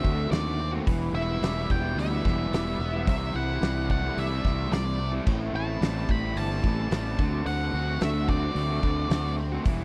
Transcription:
Already playing: overdriven electric guitar A3 C4 F#4, lead electric guitar E5
0.04 fingered electric bass D2, overdriven electric guitar D3 A3 C4 F#4, kick
0.31 fingered electric bass D#2, overdriven electric guitar D3 A3 C4, lead electric guitar D5, snare, open hi-hat
0.35 overdriven electric guitar F#4
0.46 overdriven electric guitar A3 C4 F#4
0.59 overdriven electric guitar C4, muted overdriven electric guitar stroke
0.72 overdriven electric guitar A3 C4 F#4
0.86 fingered electric bass E1, overdriven electric guitar E3 G3 B3 E4, kick, open hi-hat
1.13 fingered electric bass E1, overdriven electric guitar E3 G3 B3, lead electric guitar E5
1.17 overdriven electric guitar E4
1.42 fingered electric bass E1, overdriven electric guitar E3 G3 B3 E4, snare, open hi-hat
1.54 overdriven electric guitar G3 B3 E4
1.67 fingered electric bass E1, overdriven electric guitar E3 G3 B3, lead electric guitar G5, kick
1.71 overdriven electric guitar E4
1.82 overdriven electric guitar G3 B3 E4
1.95 fingered electric bass D2, overdriven electric guitar G3, lead electric guitar E5, open hi-hat
2.10 overdriven electric guitar G3 B3 E4
2.23 fingered electric bass E1, overdriven electric guitar E3 G3 B3 E4, kick, snare
2.51 fingered electric bass E1, overdriven electric guitar E3 G3 B3 E4, snare, open hi-hat
2.66 overdriven electric guitar G3 B3 E4
2.79 fingered electric bass E1, overdriven electric guitar B3, muted overdriven electric guitar stroke
2.93 overdriven electric guitar G3 B3 E4
3.05 fingered electric bass C2, overdriven electric guitar C3 E3 G3 C4 E4, lead electric guitar E5, kick, open hi-hat
3.33 fingered electric bass C2, overdriven electric guitar E3 G3 C4 E4, lead electric guitar F#5
3.60 fingered electric bass C2, overdriven electric guitar C3 E3 G3 C4 E4, snare, open hi-hat
3.76 overdriven electric guitar G3 C4 E4
3.88 overdriven electric guitar E3 G3 A3 C4 E4, lead electric guitar F#5, kick
4.02 overdriven electric guitar G3 C4 E4
4.17 fingered electric bass C2, overdriven electric guitar G3, lead electric guitar E5, open hi-hat
4.29 overdriven electric guitar G3 C4 E4
4.43 fingered electric bass C2, overdriven electric guitar C3 E3 G3 C4 E4, kick, snare
4.70 fingered electric bass C2, overdriven electric guitar C3 E3 G3 C4 E4, lead electric guitar D5, snare, open hi-hat
4.84 overdriven electric guitar G3 C4 E4
4.99 overdriven electric guitar A3, muted overdriven electric guitar stroke
5.12 overdriven electric guitar G3 C4 E4
5.25 fingered electric bass A1, overdriven electric guitar A2 E3 A3 C4 E4, kick, crash
5.52 fingered electric bass A1, overdriven electric guitar E3 A3 C4 E4, lead electric guitar A5
5.80 fingered electric bass A1, overdriven electric guitar A2 E3 G3 A3 C4 E4, snare, open hi-hat
5.94 overdriven electric guitar A3 C4 E4
6.08 fingered electric bass A1, overdriven electric guitar E3 A3 C4 E4, lead electric guitar B5, kick
6.23 overdriven electric guitar A3 C4 E4
6.36 fingered electric bass G1, overdriven electric guitar G3, lead electric guitar A5, open hi-hat
6.49 overdriven electric guitar A3 C4 E4
6.64 fingered electric bass A1, overdriven electric guitar E3 A3 C4 E4, kick
6.91 fingered electric bass A1, overdriven electric guitar A2 E3 G3 A3 C4 E4, snare, open hi-hat
7.05 overdriven electric guitar A3 C4 E4
7.18 fingered electric bass D2, overdriven electric guitar D3 A3 C4 F#4, kick
7.32 overdriven electric guitar A3 C4 F#4
7.46 fingered electric bass D2, overdriven electric guitar D3 A3 C4 F#4, lead electric guitar F#5, open hi-hat
7.73 fingered electric bass D2, overdriven electric guitar D3 A3 C4 F#4
8.00 fingered electric bass D2, overdriven electric guitar D3 A3 C4 F#4, lead electric guitar E5, snare, open hi-hat
8.14 overdriven electric guitar A3 C4 F#4
8.28 overdriven electric guitar D3 A3 C4 F#4, lead electric guitar D5, kick
8.43 overdriven electric guitar A3 C4 F#4
8.55 fingered electric bass D2, overdriven electric guitar A3, open hi-hat
8.70 overdriven electric guitar A3 C4 F#4
8.83 fingered electric bass D2, overdriven electric guitar D3 A3 C4, kick
8.87 overdriven electric guitar F#4
9.10 fingered electric bass D2, overdriven electric guitar D3 A3 C4 F#4, snare, open hi-hat
9.24 overdriven electric guitar A3 C4 F#4
9.38 overdriven electric guitar C4, muted overdriven electric guitar stroke
9.52 overdriven electric guitar A3 C4 F#4
9.65 fingered electric bass E1, overdriven electric guitar E3 G3 B3, kick, open hi-hat
9.70 overdriven electric guitar E4

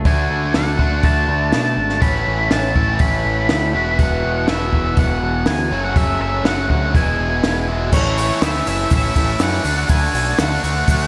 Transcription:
0.05 picked electric bass D2, overdriven electric guitar D3 A3 D4 F#4, lead electric guitar G#5, kick, open hi-hat
0.30 picked electric bass D2
0.54 picked electric bass D2, lead electric guitar F#5, snare, open hi-hat
0.78 picked electric bass D2, overdriven electric guitar D3 A3 D4 F#4, kick
1.03 picked electric bass D2, lead electric guitar A5, kick, open hi-hat
1.28 picked electric bass D2
1.52 picked electric bass B2, lead electric guitar A5, snare, open hi-hat
1.77 picked electric bass G#1
1.90 snare
2.01 picked electric bass A1, overdriven electric guitar A2 E3 A3 C#4 E4, lead electric guitar B5, kick, open hi-hat
2.27 picked electric bass A1
2.51 picked electric bass A1, lead electric guitar A5, snare, open hi-hat
2.76 picked electric bass A1, overdriven electric guitar A2 E3 A3 C#4 E4, kick
2.99 picked electric bass A1, lead electric guitar B5, kick, open hi-hat
3.25 picked electric bass A1
3.49 picked electric bass D2, lead electric guitar B5, snare, open hi-hat
3.74 picked electric bass E1, overdriven electric guitar E2 B2 E3 B3 E4 F#4
3.99 picked electric bass E1, lead electric guitar F#5, kick, open hi-hat
4.24 picked electric bass E1
4.48 picked electric bass E1, overdriven electric guitar E2 B2 E3 B3 E4 F#4, lead electric guitar E5, snare, open hi-hat
4.73 picked electric bass E1, kick
4.97 picked electric bass E1, lead electric guitar F#5, kick, open hi-hat
5.22 picked electric bass E1
5.46 picked electric bass D2, lead electric guitar G#5, snare, open hi-hat
5.71 picked electric bass F#1, overdriven electric guitar F#2 C#3 F#3 A3 C#4 F#4
5.85 lead electric guitar F#5
5.96 picked electric bass F#1, lead electric guitar E5, kick, open hi-hat
6.20 picked electric bass F#1, lead electric guitar E5
6.44 picked electric bass F#1, overdriven electric guitar F#2 C#3 F#3 A3 C#4 F#4, lead electric guitar F#5, snare, open hi-hat
6.70 picked electric bass D2, lead electric guitar F#5, kick
6.94 picked electric bass E1, overdriven electric guitar E2 B2 E3 G#3 B3 E4, lead electric guitar G#5, kick, open hi-hat
7.19 picked electric bass E1
7.44 picked electric bass E1, snare, open hi-hat
7.68 overdriven electric guitar E2 B2 E3 G#3 B3 E4
7.92 picked electric bass A1, overdriven electric guitar A2 E3 A3 C#4 E4, lead electric guitar C#5, kick, crash, shaker
8.06 shaker
8.17 overdriven electric guitar A3 C#4 E4, open hi-hat, shaker
8.42 picked electric bass D2, overdriven electric guitar A2 E3 A3 C#4 E4, lead electric guitar E5, snare, open hi-hat, shaker
8.66 picked electric bass F#1, overdriven electric guitar A3 C#4 E4, lead electric guitar E5, open hi-hat, shaker
8.79 shaker
8.90 picked electric bass A1, lead electric guitar E5, kick, open hi-hat, shaker
9.03 shaker
9.15 picked electric bass A1, overdriven electric guitar A3 C#4 E4, kick, open hi-hat, shaker
9.27 shaker
9.39 picked electric bass F#2, overdriven electric guitar E3 A3 C#4 E4, lead electric guitar F#5, snare, open hi-hat, shaker
9.64 picked electric bass D2, overdriven electric guitar D3 A3 D4 F#4, open hi-hat, shaker
9.77 shaker
9.89 picked electric bass D2, overdriven electric guitar D3 A3 D4 F#4, lead electric guitar G#5, kick, open hi-hat, shaker
10.02 shaker
10.14 picked electric bass B1, overdriven electric guitar A3 D4 F#4, open hi-hat, shaker
10.38 picked electric bass D2, overdriven electric guitar D3 A3 D4 F#4, lead electric guitar F#5, snare, open hi-hat, shaker
10.62 picked electric bass D2, overdriven electric guitar A3 D4 F#4, open hi-hat, shaker
10.77 shaker
10.88 picked electric bass D2, kick, open hi-hat, shaker
11.00 shaker

